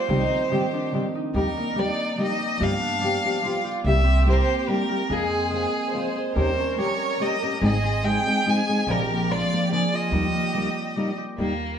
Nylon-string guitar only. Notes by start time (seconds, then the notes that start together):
0.08 C3 D#3 G3 C4 D4 G4
0.50 G3 C4 D4 G4
0.93 G3 C4 D4 G4
1.34 D#3 G3 A#3 D#4 G4
1.76 G3 A#3 D#4 G4
2.19 G3 A#3 D#4 G4
2.60 G2 D3 F3 B3 F4 G4
3.03 F3 B3 F4 G4
3.25 F3 B3 F4 G4
3.45 F3 B3 F4 G4
3.86 C3 G3 A#3 E4 G4
4.25 G3 A#3 E4 G4
4.68 G3 A#3 E4 G4
4.89 G3 A#3 E4 G4
5.11 F3 C4 F4 G#4
5.53 F3 C4 F4 G#4
5.94 F3 C4 F4 G#4
6.35 D#3 A#3 C#4 G4 A#4
6.77 A#3 C#4 G4 A#4
7.20 A#3 C#4 G4 A#4
7.42 A#3 C#4 G4 A#4
7.61 G#2 D#3 G#3 C4 D#4 G#4
8.03 G#3 C4 D#4 G#4
8.26 G#3 C4 D#4 G#4
8.46 G#3 C4 D#4 G#4
8.68 G#3 C4 D#4 G#4
8.87 A#2 D3 F3 A#3 D4 A#4
9.30 F3 A#3 D4 A#4
9.51 F3 A#3 D4 A#4
9.70 F3 A#3 D4 A#4
10.12 D#3 G3 A#3 D#4 A#4
10.54 G3 A#3 D#4 A#4
10.97 G3 A#3 D#4 A#4
11.38 D#3 G3 A#3 D#4 G4